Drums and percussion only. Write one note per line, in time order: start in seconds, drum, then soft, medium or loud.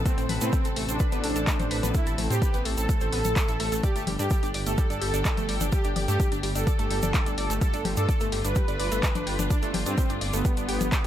0.06 kick loud
0.06 closed hi-hat medium
0.06 shaker medium
0.18 closed hi-hat medium
0.18 shaker soft
0.29 open hi-hat loud
0.29 low conga medium
0.41 closed hi-hat medium
0.41 shaker medium
0.53 kick loud
0.53 closed hi-hat medium
0.53 shaker medium
0.65 closed hi-hat medium
0.65 shaker soft
0.76 open hi-hat loud
0.89 closed hi-hat medium
0.89 shaker medium
1.00 kick loud
1.00 closed hi-hat medium
1.00 shaker medium
1.12 closed hi-hat medium
1.12 shaker soft
1.24 open hi-hat loud
1.36 closed hi-hat medium
1.36 shaker medium
1.47 kick loud
1.47 clap loud
1.47 closed hi-hat medium
1.47 shaker medium
1.60 closed hi-hat medium
1.60 low conga medium
1.60 shaker soft
1.71 open hi-hat loud
1.83 closed hi-hat medium
1.83 low conga medium
1.83 shaker medium
1.94 kick loud
1.94 closed hi-hat medium
1.94 shaker medium
2.07 closed hi-hat medium
2.07 shaker soft
2.18 open hi-hat loud
2.18 low conga medium
2.30 closed hi-hat medium
2.30 shaker medium
2.42 kick loud
2.42 closed hi-hat medium
2.42 shaker medium
2.54 closed hi-hat medium
2.54 shaker soft
2.65 open hi-hat medium
2.78 closed hi-hat medium
2.78 shaker medium
2.89 kick loud
2.89 closed hi-hat medium
2.89 shaker medium
3.01 closed hi-hat medium
3.01 shaker soft
3.13 open hi-hat loud
3.25 closed hi-hat medium
3.25 low conga medium
3.25 shaker medium
3.36 kick loud
3.36 clap loud
3.36 closed hi-hat medium
3.36 shaker medium
3.48 closed hi-hat medium
3.48 shaker soft
3.60 open hi-hat loud
3.72 closed hi-hat medium
3.72 shaker medium
3.83 kick loud
3.83 closed hi-hat medium
3.83 shaker medium
3.96 closed hi-hat medium
3.96 shaker soft
4.07 open hi-hat loud
4.07 low conga medium
4.19 closed hi-hat medium
4.19 shaker medium
4.30 kick loud
4.30 closed hi-hat medium
4.30 shaker medium
4.43 closed hi-hat medium
4.43 shaker soft
4.54 open hi-hat medium
4.66 closed hi-hat medium
4.66 shaker medium
4.78 kick loud
4.78 closed hi-hat soft
4.78 shaker medium
4.90 closed hi-hat medium
4.90 shaker soft
5.02 open hi-hat loud
5.14 closed hi-hat medium
5.14 shaker medium
5.25 kick loud
5.25 clap loud
5.25 closed hi-hat medium
5.25 shaker medium
5.37 closed hi-hat medium
5.37 low conga medium
5.37 shaker soft
5.49 open hi-hat medium
5.61 closed hi-hat medium
5.61 low conga medium
5.61 shaker medium
5.72 kick loud
5.72 closed hi-hat medium
5.72 shaker medium
5.84 closed hi-hat medium
5.84 shaker soft
5.96 open hi-hat loud
5.96 low conga medium
6.08 closed hi-hat medium
6.08 shaker medium
6.20 kick loud
6.20 closed hi-hat medium
6.20 shaker medium
6.32 closed hi-hat medium
6.32 shaker soft
6.43 open hi-hat medium
6.55 closed hi-hat medium
6.55 shaker medium
6.67 kick loud
6.67 closed hi-hat medium
6.67 shaker medium
6.79 closed hi-hat medium
6.79 shaker soft
6.91 open hi-hat loud
7.02 closed hi-hat medium
7.02 low conga loud
7.02 shaker medium
7.14 kick loud
7.14 clap loud
7.14 closed hi-hat medium
7.14 shaker medium
7.26 closed hi-hat medium
7.26 shaker soft
7.38 open hi-hat medium
7.50 closed hi-hat medium
7.50 shaker medium
7.61 kick loud
7.61 closed hi-hat medium
7.61 shaker medium
7.74 closed hi-hat medium
7.74 shaker soft
7.85 open hi-hat loud
7.85 low conga medium
7.97 closed hi-hat medium
7.97 shaker medium
8.09 kick loud
8.09 closed hi-hat medium
8.09 shaker medium
8.20 closed hi-hat medium
8.20 shaker soft
8.32 open hi-hat medium
8.45 closed hi-hat medium
8.45 shaker medium
8.56 kick loud
8.56 closed hi-hat medium
8.56 shaker medium
8.68 closed hi-hat medium
8.68 shaker soft
8.80 open hi-hat loud
8.92 closed hi-hat medium
8.92 shaker medium
9.03 kick loud
9.03 clap loud
9.03 closed hi-hat medium
9.03 shaker medium
9.15 closed hi-hat medium
9.15 low conga loud
9.15 shaker soft
9.27 open hi-hat medium
9.39 closed hi-hat medium
9.39 low conga medium
9.39 shaker medium
9.50 kick loud
9.50 closed hi-hat medium
9.50 shaker medium
9.63 closed hi-hat medium
9.63 shaker soft
9.74 open hi-hat loud
9.74 low conga medium
9.86 closed hi-hat medium
9.86 shaker medium
9.98 kick loud
9.98 closed hi-hat medium
9.98 shaker medium
10.09 closed hi-hat medium
10.09 shaker soft
10.21 open hi-hat medium
10.33 closed hi-hat medium
10.33 shaker medium
10.45 kick loud
10.45 closed hi-hat medium
10.45 shaker medium
10.57 closed hi-hat medium
10.57 shaker soft
10.69 open hi-hat loud
10.81 closed hi-hat medium
10.81 low conga loud
10.81 shaker medium
10.92 kick loud
10.92 clap loud
10.92 closed hi-hat medium
10.92 shaker medium